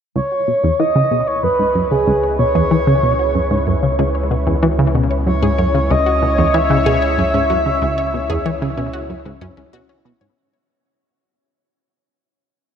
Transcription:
0.16 synth arpeggio sound C#2 C#4, analog synth bass C#2, analog synth pad C#4 E4 B4, soft synth lead C#5
0.32 synth arpeggio sound F#4
0.48 synth arpeggio sound B2
0.64 synth arpeggio sound E2 C#3
0.79 synth arpeggio sound E3 C#5, soft synth lead D#5
0.95 synth arpeggio sound C#3
1.11 synth arpeggio sound B2 G#4
1.27 soft synth lead C#5, synth arpeggio sound C#5
1.43 synth arpeggio sound F#2, soft synth lead B4
1.59 synth arpeggio sound G#2 C#4
1.75 synth arpeggio sound F#2 F#4
1.91 synth arpeggio sound C#3, soft synth lead G#4
2.07 synth arpeggio sound C#2 C#3
2.23 synth arpeggio sound C#5
2.39 synth arpeggio sound B2, soft synth lead C#5
2.55 synth arpeggio sound E2 G#4
2.71 synth arpeggio sound E3 C#5
2.87 synth arpeggio sound C#3
3.03 synth arpeggio sound B2 C#4
3.19 synth arpeggio sound F#4
3.35 synth arpeggio sound F#2
3.51 synth arpeggio sound G#2 C#3
3.67 synth arpeggio sound F#2 C#5
3.83 synth arpeggio sound C#3
3.99 synth arpeggio sound C#2 G#4
4.15 synth arpeggio sound C#5
4.31 synth arpeggio sound B2
4.47 synth arpeggio sound E2 C#4
4.63 synth arpeggio sound E3 F#4
4.79 synth arpeggio sound C#3
4.95 synth arpeggio sound B2 C#3
5.11 synth arpeggio sound C#5
5.27 synth arpeggio sound F#2, soft synth lead C#5, analog synth pad C#5
5.42 synth arpeggio sound G#2 G#4
5.58 synth arpeggio sound F#2 C#5
5.74 synth arpeggio sound C#3
5.90 synth arpeggio sound C#2 C#4, soft synth lead D#5
6.06 synth arpeggio sound F#4
6.22 synth arpeggio sound B2
6.38 synth arpeggio sound E2 C#3
6.54 synth arpeggio sound E3 C#5, soft synth lead E5
6.70 synth arpeggio sound C#3
6.86 synth arpeggio sound B2 G#4
7.02 synth arpeggio sound C#5
7.18 synth arpeggio sound F#2
7.34 synth arpeggio sound G#2 C#4
7.50 synth arpeggio sound F#2 F#4
7.66 synth arpeggio sound C#3
7.82 synth arpeggio sound C#2 C#3
7.98 synth arpeggio sound C#5
8.14 synth arpeggio sound B2
8.30 synth arpeggio sound E2 G#4
8.46 synth arpeggio sound E3 C#5
8.62 synth arpeggio sound C#3
8.78 synth arpeggio sound B2 C#4
8.93 synth arpeggio sound F#4
9.09 synth arpeggio sound F#2
9.25 synth arpeggio sound G#2 C#3
9.41 synth arpeggio sound F#2 C#4
9.57 synth arpeggio sound C#2 C#4
9.73 synth arpeggio sound B2 F#4
9.89 synth arpeggio sound C#4
10.05 synth arpeggio sound B2
10.21 synth arpeggio sound G#2 C#5

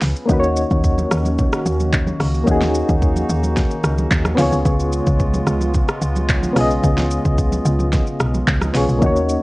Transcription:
0.02 log drum bass C#2, snare, open hi-hat, shaker
0.16 shaker
0.26 log drum bass D#2, analog synth pad D#3 A#3 C#4 F#4, synth keys A#3 C#4 D#4, kick, low conga, shaker
0.31 synth keys F#4 B4
0.40 synth keys C#5, shaker
0.56 shaker
0.70 log drum bass D#2, kick, shaker
0.84 kick, shaker
0.98 high conga, shaker
1.11 log drum bass D#2, cross-stick, shaker
1.25 high conga, shaker
1.38 kick, low conga, shaker
1.52 cross-stick, shaker
1.66 log drum bass D#2, shaker
1.80 high conga, shaker
1.93 kick, clap, low conga, shaker
2.07 high conga, shaker
2.20 log drum bass C#2, cross-stick, open hi-hat, shaker
2.34 shaker
2.44 log drum bass D#2, synth keys A#3 C#4 D#4, analog synth pad D#4, kick, low conga, shaker
2.49 synth keys F#4 G#4
2.62 snare, shaker
2.75 shaker
2.89 log drum bass D#2, kick, shaker
3.02 kick, shaker
3.16 high conga, shaker
3.29 log drum bass D#2, shaker
3.43 high conga, shaker
3.56 kick, snare, low conga, shaker
3.70 shaker
3.83 log drum bass C#2, cross-stick, shaker
3.98 high conga, shaker
4.11 log drum bass D#2, kick, clap, low conga, shaker
4.25 cross-stick, high conga, shaker
4.35 log drum bass C#2, analog synth pad C#3 G#3 B3 F4, synth keys B3 C#4 F4, snare, open hi-hat, shaker
4.40 synth keys G#4 C#5
4.52 log drum bass C#2, shaker
4.65 log drum bass C#2, kick, low conga, shaker
4.80 shaker
4.93 shaker
5.07 log drum bass C#2, kick, shaker
5.20 kick, shaker
5.34 high conga, shaker
5.47 log drum bass C#2, cross-stick, shaker
5.61 high conga, shaker
5.74 kick, low conga, shaker
5.88 cross-stick, shaker
6.02 log drum bass C#2, shaker
6.16 high conga, shaker
6.29 kick, clap, low conga, shaker
6.43 high conga, shaker
6.53 log drum bass B1, synth keys B3 C#4 F4, cross-stick, open hi-hat, shaker
6.59 synth keys G#4 D#5
6.71 shaker
6.83 log drum bass C#2, kick, low conga, shaker
6.98 snare, shaker
7.11 shaker
7.25 log drum bass C#2, kick, shaker
7.38 kick, shaker
7.52 high conga, shaker
7.65 log drum bass C#2, low conga, shaker
7.79 high conga, shaker
7.93 kick, snare, low conga, shaker
8.07 shaker
8.20 log drum bass B1, cross-stick, shaker
8.34 high conga, shaker
8.47 log drum bass C#2, kick, clap, low conga, shaker
8.61 cross-stick, high conga, shaker
8.73 log drum bass B1, synth keys B3 C#4 F4 G#4 C#5, snare, open hi-hat, shaker
8.89 log drum bass B1, shaker
8.99 log drum bass D#2, analog synth pad D#3 A#3 C#4 F#4, synth keys A#3 C#4 D#4, kick, low conga, shaker
9.04 synth keys F#4 C#5
9.16 shaker
9.29 shaker

